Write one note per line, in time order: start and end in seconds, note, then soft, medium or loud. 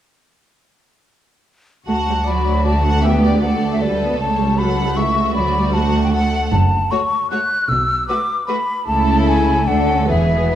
1.87 4.16 D2 soft
1.87 1.96 A3 soft
1.87 2.24 F#4 soft
1.87 2.25 F#5 soft
1.87 2.29 A5 medium
2.08 2.16 G3 soft
2.27 2.65 F#3 soft
2.27 3.03 F#4 soft
2.27 2.65 D5 soft
2.27 2.65 B5 medium
2.66 3.05 A3 soft
2.66 2.85 D5 soft
2.66 3.07 A5 medium
2.85 3.04 F#5 soft
3.04 3.43 B3 soft
3.04 3.43 G4 soft
3.04 3.24 E5 soft
3.04 3.42 G5 medium
3.24 3.42 D5 soft
3.42 3.82 A3 soft
3.42 4.57 A4 soft
3.42 3.81 D5 soft
3.42 3.71 F#5 soft
3.73 3.83 E5 soft
3.82 4.01 G3 soft
3.82 4.20 B4 soft
3.82 4.19 D5 medium
4.01 4.20 B3 soft
4.20 5.34 C#2 soft
4.20 4.39 A3 soft
4.20 4.59 C#5 soft
4.20 4.60 A5 medium
4.39 4.59 G3 soft
4.58 4.78 F#3 soft
4.58 4.97 A4 soft
4.58 4.97 F#5 soft
4.58 4.98 B5 medium
4.78 4.98 G3 soft
4.97 5.36 A3 soft
4.97 5.17 E4 soft
4.97 5.37 E5 soft
4.97 5.34 C#6 medium
5.17 5.73 F#4 soft
5.35 6.53 D2 soft
5.35 5.56 F#3 soft
5.35 5.75 D5 soft
5.35 5.75 B5 medium
5.56 5.75 G3 soft
5.74 6.13 A3 soft
5.74 6.13 F#4 soft
5.74 6.12 F#5 soft
5.74 6.03 A5 medium
6.04 6.13 G5 soft
6.13 6.52 A3 soft
6.13 6.53 A4 soft
6.13 6.51 F#5 medium
6.13 6.52 F#5 soft
6.51 6.83 F#1 medium
6.51 6.84 F#2 medium
6.51 6.92 A5 medium
6.91 7.00 A3 soft
6.91 6.99 F#4 soft
6.91 7.00 C#5 soft
6.91 7.30 C#6 medium
7.31 7.39 A3 soft
7.31 7.39 F#4 soft
7.31 7.39 C#5 soft
7.31 7.70 F#6 medium
7.69 8.01 B1 medium
7.69 8.01 B2 medium
7.69 8.07 E6 medium
8.08 8.17 A3 soft
8.08 8.18 F#4 soft
8.08 8.17 B4 soft
8.08 8.46 D6 medium
8.47 8.56 A3 soft
8.47 8.57 F#4 soft
8.47 8.56 B4 soft
8.47 8.86 B5 medium
8.87 9.64 C#2 medium
8.87 9.64 C#3 soft
8.87 9.64 A3 soft
8.87 9.64 E4 soft
8.87 9.64 A4 soft
8.87 9.26 A5 medium
9.27 9.69 G#5 medium
9.68 10.09 D2 soft
9.68 10.10 D3 soft
9.68 10.09 A3 soft
9.68 9.88 D4 soft
9.68 10.09 A4 soft
9.68 10.09 F#5 medium
9.89 10.10 C#4 soft
10.09 10.55 E1 soft
10.09 10.55 E2 soft
10.09 10.55 E3 soft
10.09 10.55 B3 soft
10.09 10.48 G#4 soft
10.09 10.55 E5 medium
10.52 10.55 G#4 soft